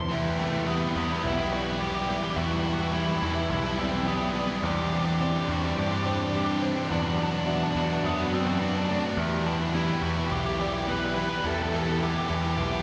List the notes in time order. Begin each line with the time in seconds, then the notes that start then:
Already playing: G3 C4 E4 A4 C5
0.00 C6
0.09 E2 E3 G3 B3 E4 G4 B4 E5 B5
0.37 E3 A3 B3 E4 G4
0.52 B3 E4 G4
0.65 E3 G3 B3 E4 G4 E5
0.75 B3
0.83 B3
0.89 B3
0.94 E2 E3 B3 E4 G4
1.05 B3 G4
1.10 B3 E4
1.19 B3
1.23 B1 E4 E5
1.36 B3 E4 G4
1.51 E3 B3 E4 F#4 G4 D5
1.66 B3 E4 G4
1.79 E3 G3 B3 E4 G4
1.86 G4
1.93 B3 E4 G4
2.02 G4
2.08 E3 B3 E4 G4 D5
2.16 G4
2.22 B3 E4 G4
2.30 G4
2.36 E2 E3 B3 E4 F#4 G4 E5 A5
2.44 F#4
2.51 F#4
2.60 F#4
2.64 E3 B3 E4 F#4 G4
2.73 F#4
2.78 B3 E4 F#4 G4
2.88 F#4
2.92 E3 G3 B3 E4 G4 E5
3.02 E4
3.10 E4
3.18 E3 E4
3.22 E2 B3 E4 G4
3.33 E4 G4
3.38 B3 E4
3.50 B1 E4 E5
3.63 B3 E4 G4
3.77 E3 B3 C4 E4 G4 D5
3.92 B3 E4 G4
4.05 E3 G3 B3 E4 G4
4.16 B3 G4
4.21 B3 E4
4.31 E3 B3
4.35 E4 G4 D5
4.40 B3
4.49 B3 E4 G4
4.63 E2 E3 C4 D4 G4 C5 D5 C6
4.74 G4
4.81 G4
4.90 E3 C4 G4
4.94 D4 G4
5.05 C4 D4 G4
5.14 G4
5.19 E3 C4 D4 G4 D5
5.30 G4
5.38 G4
5.48 E2 E3 C4 D4 F#4 G4
5.62 C4 D4 G4
5.77 G2 G4 D5
5.88 G4
5.92 C4 D4
5.96 G4
6.03 E3 C4 D4 G4 C5
6.08 G4
6.12 G4
6.18 C4 D4 G4
6.27 G4
6.32 E3 C4 D4 G4
6.44 G4
6.48 C4 D4 G4
6.60 E3 C4 D4 G4 C5
6.74 C4 D4 G4
6.89 E2 B2 E3 F#3 B3 D4 F#4 B4 D5 A5
7.00 D4
7.09 D4
7.16 F#3 B3 D4
7.20 D4 F#4
7.31 B3 D4 F#4
7.39 D4
7.46 B2 F#3 B3 D4 F#4 E5
7.56 D4
7.63 D4
7.71 F#3 D4
7.75 E2 B3 D4 F#4
7.85 D4
7.89 B3 D4 F#4
8.03 F#2 B3 B4 E5
8.17 B3 D4 F#4
8.32 F#3 B3 C4 D4 F#4 D5
8.46 B3 D4 F#4
8.60 B2 F#3 B3 D4 F#4
8.70 D4
8.75 B3 D4 F#4
8.85 F#3 D4 D5
8.90 A3 B3 D4 F#4
9.03 B3 D4 F#4
9.16 E2 E3 B3 E4 G4 E5 B5
9.21 G4
9.45 E3 B3 D4 E4 G4
9.59 B3 E4 G4
9.74 E3 B3 E4 G4 E5
10.01 E2 E3 B3 E4 F#4 G4
10.16 B3 E4 G4
10.31 B1 G4 E5
10.39 G4
10.44 B3 E4 G4
10.54 E3 G4
10.59 B3 E4 G4 D5
10.68 G4
10.73 B3 E4 G4
10.83 E3 G4
10.88 B3 E4 G4 B4
10.98 G4 B4
11.02 B3 E4 B4
11.14 E3 B3 E4 G4 B4 D5
11.22 B4
11.28 B3 E4 G4 B4
11.38 E3 B4
11.43 E2 B3 E4 G4 A4 E5 A5
11.54 A4
11.62 A4
11.69 E3 B3 A4
11.73 E4 G4 A4
11.83 E4 G4 A4
11.89 B3 A4
11.99 E3 B3 E4 G4 E5
12.03 G4
12.11 G4
12.18 G4
12.26 E2 E3 B3 G4
12.30 E4 G4
12.35 G4
12.43 B3 E4 G4
12.51 G4
12.57 B1 G4 E5
12.71 B3 E4 G4